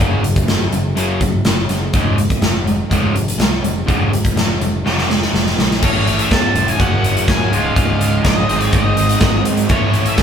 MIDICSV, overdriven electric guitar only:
0, 0, Header, 1, 2, 480
1, 0, Start_track
1, 0, Time_signature, 4, 2, 24, 8
1, 0, Key_signature, -5, "major"
1, 0, Tempo, 485044
1, 10122, End_track
2, 0, Start_track
2, 0, Title_t, "Overdriven electric guitar"
2, 0, Program_c, 0, 29
2, 0, Note_on_c, 0, 42, 71
2, 0, Note_on_c, 0, 49, 85
2, 0, Note_on_c, 0, 54, 88
2, 212, Note_off_c, 0, 42, 0
2, 216, Note_off_c, 0, 49, 0
2, 224, Note_off_c, 0, 54, 0
2, 224, Note_on_c, 0, 42, 68
2, 228, Note_on_c, 0, 49, 71
2, 448, Note_off_c, 0, 42, 0
2, 449, Note_off_c, 0, 49, 0
2, 473, Note_on_c, 0, 42, 78
2, 477, Note_on_c, 0, 49, 81
2, 693, Note_off_c, 0, 42, 0
2, 695, Note_off_c, 0, 49, 0
2, 721, Note_on_c, 0, 42, 60
2, 721, Note_on_c, 0, 49, 74
2, 931, Note_off_c, 0, 42, 0
2, 937, Note_off_c, 0, 49, 0
2, 943, Note_on_c, 0, 42, 80
2, 955, Note_on_c, 0, 49, 89
2, 961, Note_on_c, 0, 54, 90
2, 1178, Note_off_c, 0, 42, 0
2, 1184, Note_off_c, 0, 49, 0
2, 1187, Note_off_c, 0, 54, 0
2, 1198, Note_on_c, 0, 42, 69
2, 1202, Note_on_c, 0, 49, 66
2, 1416, Note_off_c, 0, 42, 0
2, 1418, Note_off_c, 0, 49, 0
2, 1440, Note_on_c, 0, 42, 62
2, 1447, Note_on_c, 0, 49, 70
2, 1658, Note_off_c, 0, 42, 0
2, 1661, Note_off_c, 0, 49, 0
2, 1678, Note_on_c, 0, 42, 60
2, 1681, Note_on_c, 0, 49, 76
2, 1897, Note_off_c, 0, 42, 0
2, 1899, Note_off_c, 0, 49, 0
2, 1916, Note_on_c, 0, 37, 73
2, 1924, Note_on_c, 0, 44, 76
2, 1934, Note_on_c, 0, 49, 78
2, 2146, Note_off_c, 0, 37, 0
2, 2150, Note_off_c, 0, 44, 0
2, 2155, Note_off_c, 0, 49, 0
2, 2163, Note_on_c, 0, 37, 70
2, 2168, Note_on_c, 0, 44, 68
2, 2380, Note_off_c, 0, 37, 0
2, 2383, Note_off_c, 0, 44, 0
2, 2394, Note_on_c, 0, 44, 81
2, 2395, Note_on_c, 0, 37, 67
2, 2616, Note_off_c, 0, 44, 0
2, 2617, Note_off_c, 0, 37, 0
2, 2634, Note_on_c, 0, 37, 65
2, 2639, Note_on_c, 0, 44, 76
2, 2856, Note_off_c, 0, 37, 0
2, 2859, Note_off_c, 0, 44, 0
2, 2868, Note_on_c, 0, 37, 84
2, 2882, Note_on_c, 0, 44, 81
2, 2884, Note_on_c, 0, 49, 84
2, 3095, Note_off_c, 0, 37, 0
2, 3098, Note_off_c, 0, 44, 0
2, 3107, Note_on_c, 0, 37, 72
2, 3110, Note_on_c, 0, 44, 78
2, 3111, Note_off_c, 0, 49, 0
2, 3333, Note_off_c, 0, 37, 0
2, 3335, Note_off_c, 0, 44, 0
2, 3345, Note_on_c, 0, 37, 68
2, 3350, Note_on_c, 0, 44, 72
2, 3572, Note_off_c, 0, 37, 0
2, 3575, Note_off_c, 0, 44, 0
2, 3584, Note_on_c, 0, 37, 62
2, 3589, Note_on_c, 0, 44, 76
2, 3808, Note_off_c, 0, 37, 0
2, 3815, Note_off_c, 0, 44, 0
2, 3820, Note_on_c, 0, 37, 66
2, 3828, Note_on_c, 0, 44, 80
2, 3835, Note_on_c, 0, 49, 79
2, 4057, Note_off_c, 0, 37, 0
2, 4061, Note_off_c, 0, 44, 0
2, 4067, Note_off_c, 0, 49, 0
2, 4069, Note_on_c, 0, 37, 64
2, 4073, Note_on_c, 0, 44, 72
2, 4295, Note_off_c, 0, 37, 0
2, 4297, Note_off_c, 0, 44, 0
2, 4312, Note_on_c, 0, 37, 74
2, 4320, Note_on_c, 0, 44, 80
2, 4536, Note_off_c, 0, 37, 0
2, 4540, Note_off_c, 0, 44, 0
2, 4559, Note_on_c, 0, 37, 69
2, 4561, Note_on_c, 0, 44, 72
2, 4780, Note_off_c, 0, 37, 0
2, 4781, Note_off_c, 0, 44, 0
2, 4796, Note_on_c, 0, 37, 82
2, 4808, Note_on_c, 0, 44, 94
2, 4812, Note_on_c, 0, 49, 86
2, 5028, Note_off_c, 0, 37, 0
2, 5033, Note_off_c, 0, 44, 0
2, 5035, Note_off_c, 0, 49, 0
2, 5039, Note_on_c, 0, 37, 59
2, 5044, Note_on_c, 0, 44, 80
2, 5259, Note_off_c, 0, 37, 0
2, 5262, Note_off_c, 0, 44, 0
2, 5287, Note_on_c, 0, 37, 64
2, 5291, Note_on_c, 0, 44, 77
2, 5503, Note_off_c, 0, 37, 0
2, 5505, Note_off_c, 0, 44, 0
2, 5518, Note_on_c, 0, 37, 63
2, 5520, Note_on_c, 0, 44, 63
2, 5738, Note_off_c, 0, 37, 0
2, 5740, Note_off_c, 0, 44, 0
2, 5752, Note_on_c, 0, 45, 79
2, 5762, Note_on_c, 0, 52, 75
2, 5771, Note_on_c, 0, 57, 82
2, 5779, Note_on_c, 0, 61, 81
2, 5783, Note_on_c, 0, 64, 78
2, 5787, Note_on_c, 0, 69, 78
2, 6704, Note_off_c, 0, 45, 0
2, 6709, Note_off_c, 0, 52, 0
2, 6709, Note_on_c, 0, 42, 84
2, 6714, Note_off_c, 0, 57, 0
2, 6717, Note_off_c, 0, 61, 0
2, 6718, Note_on_c, 0, 49, 88
2, 6720, Note_off_c, 0, 64, 0
2, 6722, Note_off_c, 0, 69, 0
2, 6724, Note_on_c, 0, 54, 99
2, 6737, Note_on_c, 0, 58, 90
2, 6741, Note_on_c, 0, 61, 90
2, 6748, Note_on_c, 0, 66, 90
2, 7422, Note_off_c, 0, 42, 0
2, 7426, Note_off_c, 0, 49, 0
2, 7426, Note_on_c, 0, 37, 93
2, 7429, Note_off_c, 0, 54, 0
2, 7436, Note_off_c, 0, 58, 0
2, 7438, Note_off_c, 0, 61, 0
2, 7438, Note_on_c, 0, 44, 81
2, 7441, Note_off_c, 0, 66, 0
2, 7446, Note_on_c, 0, 49, 86
2, 7456, Note_on_c, 0, 56, 85
2, 7463, Note_on_c, 0, 65, 89
2, 8369, Note_off_c, 0, 44, 0
2, 8377, Note_off_c, 0, 37, 0
2, 8381, Note_on_c, 0, 44, 84
2, 8388, Note_off_c, 0, 49, 0
2, 8393, Note_off_c, 0, 56, 0
2, 8397, Note_off_c, 0, 65, 0
2, 8400, Note_on_c, 0, 51, 93
2, 8403, Note_on_c, 0, 56, 90
2, 8410, Note_on_c, 0, 60, 90
2, 8417, Note_on_c, 0, 63, 85
2, 8425, Note_on_c, 0, 68, 89
2, 9573, Note_off_c, 0, 44, 0
2, 9582, Note_off_c, 0, 51, 0
2, 9584, Note_off_c, 0, 56, 0
2, 9585, Note_on_c, 0, 45, 67
2, 9587, Note_off_c, 0, 60, 0
2, 9591, Note_off_c, 0, 63, 0
2, 9595, Note_off_c, 0, 68, 0
2, 9596, Note_on_c, 0, 52, 72
2, 9606, Note_on_c, 0, 57, 80
2, 9613, Note_on_c, 0, 61, 83
2, 9615, Note_on_c, 0, 64, 81
2, 9627, Note_on_c, 0, 69, 87
2, 10122, Note_off_c, 0, 45, 0
2, 10122, Note_off_c, 0, 52, 0
2, 10122, Note_off_c, 0, 57, 0
2, 10122, Note_off_c, 0, 61, 0
2, 10122, Note_off_c, 0, 64, 0
2, 10122, Note_off_c, 0, 69, 0
2, 10122, End_track
0, 0, End_of_file